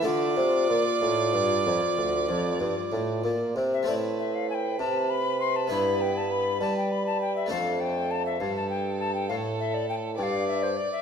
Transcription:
0.01 harpsichord D3 A3 A4, bassoon D3, recorder F4, violin D5
0.37 harpsichord C3, bassoon C3
0.69 bassoon A#2, harpsichord A#2
1.02 harpsichord A2, bassoon A2
1.34 bassoon G2, harpsichord G2
1.66 harpsichord F2, bassoon F2
1.97 harpsichord D2, bassoon D2
2.29 harpsichord F2, bassoon F2
2.60 harpsichord G2, bassoon G2
2.92 harpsichord A2, bassoon A2
3.24 harpsichord A#2, bassoon A#2
3.56 harpsichord C3, bassoon C3
3.73 recorder E5
3.83 harpsichord A3 C4 A4
3.87 harpsichord A2, bassoon A2, violin B4, recorder D5
4.19 recorder E5
4.35 recorder F5
4.50 recorder G#5
4.55 recorder G5
4.79 bassoon C3, harpsichord C3, recorder A5
5.10 recorder B5
5.40 recorder C6
5.56 recorder A5
5.67 bassoon G2, harpsichord G2 B3 E4, recorder B5
6.01 recorder G5
6.17 recorder A5
6.31 recorder B5
6.60 bassoon G3, harpsichord G3, recorder A5
6.77 recorder G5
6.92 recorder B5
7.07 recorder A5
7.21 recorder G5
7.36 recorder E5
7.46 harpsichord A3 D4 A4, recorder F5
7.50 bassoon F2, harpsichord F2, violin A4
7.80 recorder G5
8.11 recorder A5
8.26 recorder E5
8.40 bassoon G2, harpsichord G2, violin A4, recorder F5
8.56 recorder A5
8.70 recorder G5
8.99 recorder A5
9.15 recorder G5
9.29 bassoon A2, harpsichord A2, recorder F5
9.60 recorder E5
9.74 recorder D5
9.89 recorder G5
10.18 bassoon G2, harpsichord G2, violin D5, recorder G5
10.23 recorder F5
10.48 recorder E5
10.63 recorder C5
10.77 recorder D5
10.92 recorder E5

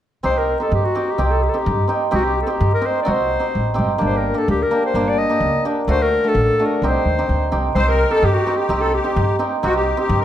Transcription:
0.23 upright bass C2, hammered dulcimer C4 D#4 G4, clarinet C5
0.38 clarinet A#4
0.60 hammered dulcimer C4 D#4 G4, clarinet A4
0.72 upright bass G2, clarinet G4
0.85 clarinet F#4
0.95 hammered dulcimer C4 D#4 G4
1.11 clarinet G4
1.18 upright bass C2, hammered dulcimer C4 D#4 G4
1.31 clarinet A4
1.43 clarinet G4
1.49 clarinet A4
1.53 hammered dulcimer C4 D#4 G4
1.58 clarinet G4
1.66 upright bass G2
1.88 hammered dulcimer C4 D#4 G4
2.11 upright bass C2, hammered dulcimer C4 D#4 G4, clarinet F#4
2.24 clarinet G4
2.42 clarinet A4
2.47 hammered dulcimer C4 D#4 G4, clarinet G4
2.61 upright bass G2
2.74 clarinet A#4
2.81 hammered dulcimer C4 D#4 G4
2.86 clarinet C5
3.02 hammered dulcimer C4 D#4, clarinet D5
3.06 upright bass C2, hammered dulcimer F#4
3.11 clarinet C5
3.39 hammered dulcimer C4 D#4 G4
3.55 upright bass A1
3.74 hammered dulcimer C4 D#4 G4
3.78 upright bass G1
3.98 upright bass G1, hammered dulcimer A#3 D4 G4
4.06 clarinet C5
4.17 clarinet A#4
4.34 hammered dulcimer A#3 D4 G4, clarinet A4
4.48 upright bass D2, clarinet G4
4.63 clarinet A#4
4.71 hammered dulcimer A#3 D4 G4
4.86 clarinet C5
4.94 upright bass G1, hammered dulcimer A#3 D4 G4
5.09 clarinet D5
5.18 clarinet D#5
5.30 hammered dulcimer A#3 D4 G4
5.40 upright bass C#2
5.65 hammered dulcimer A#3 D4 G4
5.87 upright bass D2, hammered dulcimer A3 D4 F#4, clarinet C5
6.02 clarinet A#4
6.24 hammered dulcimer A3 D4 F#4
6.28 clarinet A4
6.35 upright bass A1
6.59 hammered dulcimer A3 D4 F#4
6.65 clarinet A#4
6.82 upright bass C2, hammered dulcimer C4 D#4 G4
6.88 clarinet C5
7.05 upright bass D#2
7.18 hammered dulcimer C4 D#4 G4
7.29 upright bass D2
7.52 upright bass C2, hammered dulcimer C4 D#4 G4
7.75 upright bass C2, hammered dulcimer C4 D#4 G4, clarinet C5, accordion C5
7.88 accordion A#4, clarinet A#4
8.10 hammered dulcimer C4 D#4 G4, clarinet A4, accordion A4
8.22 upright bass G2, accordion G4, clarinet G4
8.34 clarinet F#4
8.47 hammered dulcimer C4 D#4 G4
8.57 accordion G4, clarinet G4
8.69 upright bass C2, hammered dulcimer C4 D#4 G4
8.80 accordion A4, clarinet A4
8.93 accordion G4, clarinet G4
9.04 hammered dulcimer C4 D#4 G4
9.16 upright bass G2
9.39 hammered dulcimer C4 D#4 G4
9.63 upright bass C2, hammered dulcimer C4 D#4 G4, accordion F#4, clarinet F#4
9.75 accordion G4, clarinet G4
9.97 hammered dulcimer C4 D#4 G4, accordion G4, clarinet G4
10.09 upright bass G2
10.20 accordion A#4

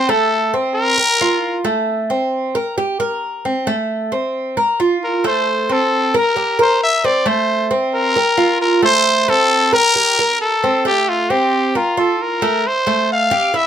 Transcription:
Already playing: trumpet C5
0.09 cuban tres A3, trumpet A4
0.54 cuban tres C4
0.75 trumpet A#4
0.98 cuban tres A#4
1.21 cuban tres F4
1.65 cuban tres A3
2.10 cuban tres C4
2.55 cuban tres A#4
2.78 cuban tres G4
3.00 cuban tres A#4
3.45 cuban tres C4
3.67 cuban tres A3
4.12 cuban tres C4
4.57 cuban tres A#4
4.80 cuban tres F4
5.04 trumpet A#4
5.24 cuban tres A3, trumpet C5
5.69 cuban tres C4, trumpet A4
6.14 cuban tres A#4, trumpet A#4
6.36 cuban tres G4
6.59 cuban tres A#4, trumpet C5
6.83 trumpet E5
7.04 cuban tres C4, trumpet D5
7.26 cuban tres A3, trumpet C5
7.71 cuban tres C4
7.94 trumpet A#4
8.16 cuban tres A#4
8.37 cuban tres F4
8.61 trumpet A#4
8.82 cuban tres A3, trumpet C5
9.28 cuban tres C4, trumpet A4
9.73 cuban tres A#4, trumpet A#4
9.96 cuban tres G4
10.19 cuban tres A#4
10.41 trumpet A4
10.64 cuban tres C4
10.85 cuban tres A3, trumpet G4
11.09 trumpet F4
11.30 cuban tres C4, trumpet G4
11.75 trumpet F4, cuban tres A#4
11.97 cuban tres F4, trumpet A4
12.22 trumpet A#4
12.42 cuban tres A3
12.67 trumpet C5
12.87 cuban tres A3
13.12 trumpet F5
13.31 cuban tres G4
13.54 cuban tres E4, trumpet E5

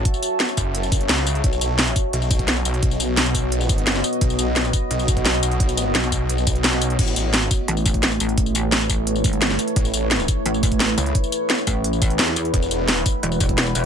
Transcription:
Already playing: ambient pad F#4 C#5 E5 A5
0.05 kick, closed hi-hat
0.14 tambourine
0.23 closed hi-hat, tambourine
0.40 snare, closed hi-hat
0.49 tambourine
0.57 detuned saw bass F#1, kick, closed hi-hat, tambourine
0.75 closed hi-hat
0.83 tambourine
0.92 kick, closed hi-hat, tambourine
1.01 closed hi-hat
1.09 detuned saw bass C#2, snare, closed hi-hat
1.18 snare, tambourine
1.27 closed hi-hat, tambourine
1.35 closed hi-hat
1.44 detuned saw bass B1, ambient pad B3 F#4 D#5, kick, closed hi-hat
1.53 tambourine
1.61 detuned saw bass B1, closed hi-hat, tambourine
1.79 snare, closed hi-hat
1.87 tambourine
1.96 kick, closed hi-hat, tambourine
2.13 detuned saw bass B1, closed hi-hat
2.22 tambourine
2.31 kick, closed hi-hat, tambourine
2.39 kick, closed hi-hat
2.48 snare, closed hi-hat
2.57 tambourine
2.65 detuned saw bass B1, closed hi-hat, tambourine
2.74 closed hi-hat
2.83 kick, closed hi-hat
2.91 tambourine
3.00 closed hi-hat, tambourine
3.17 snare, closed hi-hat
3.26 tambourine
3.35 kick, closed hi-hat, tambourine
3.52 closed hi-hat
3.61 detuned saw bass A1, tambourine
3.69 kick, closed hi-hat, tambourine
3.78 closed hi-hat
3.86 detuned saw bass G1, snare, closed hi-hat
3.95 snare, tambourine
4.04 closed hi-hat, tambourine
4.13 closed hi-hat
4.21 detuned saw bass B1, kick, closed hi-hat
4.30 tambourine
4.39 detuned saw bass B1, closed hi-hat, tambourine
4.56 snare, closed hi-hat
4.65 tambourine
4.73 kick, closed hi-hat, tambourine
4.91 detuned saw bass B1, closed hi-hat
4.99 tambourine
5.08 kick, closed hi-hat, tambourine
5.17 kick, closed hi-hat
5.25 snare, closed hi-hat
5.34 tambourine
5.43 detuned saw bass B1, closed hi-hat, tambourine
5.51 closed hi-hat
5.60 kick, closed hi-hat
5.69 closed hi-hat, tambourine
5.77 closed hi-hat, tambourine
5.95 detuned saw bass B1, snare, closed hi-hat
6.03 tambourine
6.12 kick, closed hi-hat, tambourine
6.29 closed hi-hat
6.38 tambourine
6.47 kick, closed hi-hat, tambourine
6.55 closed hi-hat
6.64 snare, closed hi-hat
6.73 snare, tambourine
6.82 closed hi-hat, tambourine
6.90 closed hi-hat
6.99 detuned saw bass A1, ambient pad A3 E4 B4 C#5, kick, closed hi-hat, crash
7.08 tambourine
7.16 detuned saw bass A1, closed hi-hat, tambourine
7.34 snare, closed hi-hat
7.42 tambourine
7.51 kick, closed hi-hat, tambourine
7.68 wobble bass A1, closed hi-hat
7.77 tambourine
7.86 kick, closed hi-hat, tambourine
7.94 kick, closed hi-hat
8.03 snare, closed hi-hat
8.12 tambourine
8.20 wobble bass A1, closed hi-hat, tambourine
8.29 closed hi-hat
8.38 kick, closed hi-hat
8.46 tambourine
8.55 closed hi-hat, tambourine
8.72 snare, closed hi-hat
8.81 tambourine
8.90 kick, closed hi-hat, tambourine
9.07 closed hi-hat
9.16 wobble bass G#1, tambourine
9.24 kick, closed hi-hat, tambourine
9.33 closed hi-hat
9.42 wobble bass G1, snare, closed hi-hat
9.50 snare, tambourine
9.59 closed hi-hat, tambourine
9.68 closed hi-hat
9.76 detuned saw bass A1, kick, closed hi-hat
9.85 tambourine
9.94 detuned saw bass A1, closed hi-hat, tambourine
10.11 snare, closed hi-hat
10.20 tambourine
10.28 kick, closed hi-hat, tambourine
10.46 wobble bass A1, closed hi-hat
10.54 tambourine
10.63 kick, closed hi-hat, tambourine
10.72 kick, closed hi-hat
10.80 snare, closed hi-hat
10.89 tambourine
10.98 detuned saw bass C#2, closed hi-hat, tambourine
11.06 closed hi-hat
11.15 kick, closed hi-hat
11.24 tambourine
11.32 closed hi-hat, tambourine
11.50 snare, closed hi-hat
11.58 tambourine
11.67 wobble bass A1, kick, closed hi-hat, tambourine
11.84 closed hi-hat
11.93 tambourine
12.02 kick, closed hi-hat, tambourine
12.10 closed hi-hat
12.19 wobble bass E2, snare, closed hi-hat
12.28 snare, tambourine
12.36 closed hi-hat, tambourine
12.45 closed hi-hat
12.54 detuned saw bass E1, ambient pad F#5 G5, kick, closed hi-hat
12.62 tambourine
12.71 detuned saw bass E1, closed hi-hat, tambourine
12.88 snare, closed hi-hat
12.97 tambourine
13.06 kick, closed hi-hat, tambourine
13.23 wobble bass E1, closed hi-hat
13.32 tambourine
13.40 kick, closed hi-hat, tambourine
13.49 kick, closed hi-hat
13.58 snare, closed hi-hat
13.66 tambourine
13.75 wobble bass E1, closed hi-hat, tambourine

